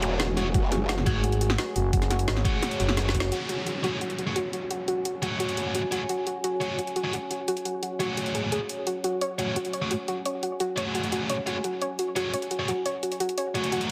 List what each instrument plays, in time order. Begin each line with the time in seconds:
Already playing: wobble bass E1, distorted electric guitar A3 F#4 G#4 C#5, ambient pad A3 F#4 G#4
0.02 synth pluck F#4, closed hi-hat, zap
0.20 synth pluck F#4, snare, closed hi-hat
0.37 distorted electric guitar A3 F#4 G#4 C#5, synth pluck F#4, closed hi-hat
0.54 wobble bass F#1, synth pluck F#4, ambient pad C#5, kick, closed hi-hat
0.72 synth pluck F#4, snare, closed hi-hat
0.89 synth pluck F#4, snare, closed hi-hat
0.98 snare
1.06 fm bass G#1, distorted electric guitar A3 F#4 G#4 C#5, synth pluck F#4, kick, closed hi-hat
1.24 synth pluck F#4, closed hi-hat
1.32 closed hi-hat
1.41 synth pluck F#4, closed hi-hat
1.50 snare
1.58 synth pluck F#4, snare, closed hi-hat
1.76 fm bass F#1, synth pluck F#4, closed hi-hat
1.93 fm bass F#1, synth pluck F#4, kick, closed hi-hat
2.02 snare, closed hi-hat
2.10 synth pluck F#4, snare, closed hi-hat
2.19 closed hi-hat
2.28 fm bass G#1, synth pluck F#4, snare, closed hi-hat
2.37 snare
2.45 distorted electric guitar A3 F#4 G#4 C#5, synth pluck F#4, kick, closed hi-hat
2.62 synth pluck F#4, snare, closed hi-hat
2.71 closed hi-hat
2.80 fm bass F#1, synth pluck F#4, closed hi-hat
2.89 snare
2.97 synth pluck F#4, snare, closed hi-hat
3.05 distorted electric guitar A3 F#4 G#4 C#5, snare
3.14 fm bass F#1, synth pluck F#4, kick, closed hi-hat
3.20 snare
3.32 synth pluck F#4, ambient pad F#4 C#5 G#5, closed hi-hat, downlifter
3.49 synth pluck F#4, closed hi-hat
3.67 synth pluck F#4, closed hi-hat
3.84 distorted electric guitar A3 F#4 G#4 C#5, synth pluck F#4, closed hi-hat
4.01 synth pluck F#4, closed hi-hat
4.10 closed hi-hat
4.19 synth pluck F#4, closed hi-hat
4.27 distorted electric guitar A3 F#4 G#4 C#5
4.36 synth pluck F#4, closed hi-hat
4.53 synth pluck F#4, closed hi-hat
4.71 synth pluck F#4, closed hi-hat
4.88 synth pluck F#4, closed hi-hat
5.05 synth pluck F#4, closed hi-hat
5.22 distorted electric guitar A3 F#4 G#4 C#5, synth pluck F#4, closed hi-hat
5.40 synth pluck F#4, closed hi-hat
5.49 closed hi-hat
5.57 synth pluck F#4, closed hi-hat
5.75 synth pluck F#4, closed hi-hat
5.91 distorted electric guitar A3 F#4 G#4 C#5, synth pluck F#4, closed hi-hat
6.09 synth pluck F#4, closed hi-hat
6.27 synth pluck F#4, closed hi-hat
6.44 synth pluck F#4, closed hi-hat
6.61 distorted electric guitar A3 F#4 G#4 C#5, synth pluck F#4, closed hi-hat
6.79 synth pluck F#4, closed hi-hat
6.87 closed hi-hat
6.96 synth pluck F#4, closed hi-hat
7.04 distorted electric guitar A3 F#4 G#4 C#5
7.13 synth pluck F#4, closed hi-hat
7.31 synth pluck F#4, closed hi-hat
7.48 synth pluck F#4, closed hi-hat
7.57 closed hi-hat
7.65 synth pluck F#4, closed hi-hat
7.83 synth pluck F#4, closed hi-hat
8.00 distorted electric guitar A3 F#4 G#4 C#5, synth pluck F#4, closed hi-hat
8.17 synth pluck F#4, closed hi-hat
8.26 closed hi-hat
8.35 synth pluck G#4, closed hi-hat
8.52 synth pluck G#4, closed hi-hat
8.69 closed hi-hat
8.87 synth pluck F#4, ambient pad G#5, closed hi-hat
9.04 synth pluck F#4, closed hi-hat
9.21 synth pluck C#5, closed hi-hat
9.38 distorted electric guitar A3 F#4 G#4 C#5, synth pluck F#4, closed hi-hat
9.56 synth pluck F#4, closed hi-hat
9.65 closed hi-hat
9.73 synth pluck C#5, closed hi-hat
9.82 distorted electric guitar A3 F#4 G#4 C#5
9.91 synth pluck F#4, closed hi-hat
10.08 synth pluck F#4, closed hi-hat
10.25 synth pluck C#5, closed hi-hat
10.43 synth pluck F#4, closed hi-hat
10.60 synth pluck F#4, closed hi-hat
10.77 distorted electric guitar A3 F#4 G#4 C#5, synth pluck C#5, closed hi-hat
10.95 synth pluck F#4, closed hi-hat
11.04 closed hi-hat
11.12 synth pluck F#4, closed hi-hat
11.30 synth pluck C#5, closed hi-hat
11.46 distorted electric guitar A3 F#4 G#4 C#5, synth pluck F#4, closed hi-hat
11.64 synth pluck F#4, closed hi-hat
11.82 synth pluck C#5, closed hi-hat
11.99 synth pluck F#4, closed hi-hat
12.16 distorted electric guitar A3 F#4 G#4 C#5, synth pluck F#4, closed hi-hat
12.34 synth pluck C#5, closed hi-hat
12.42 closed hi-hat
12.51 synth pluck F#4, closed hi-hat
12.59 distorted electric guitar A3 F#4 G#4 C#5
12.68 synth pluck F#4, closed hi-hat
12.86 synth pluck C#5, closed hi-hat
13.03 synth pluck F#4, closed hi-hat
13.12 closed hi-hat
13.20 synth pluck F#4, closed hi-hat
13.29 closed hi-hat
13.38 synth pluck C#5, closed hi-hat
13.54 distorted electric guitar A3 F#4 G#4 C#5, synth pluck F#4, closed hi-hat
13.64 closed hi-hat
13.72 synth pluck F#4, closed hi-hat, reverse cymbal
13.81 closed hi-hat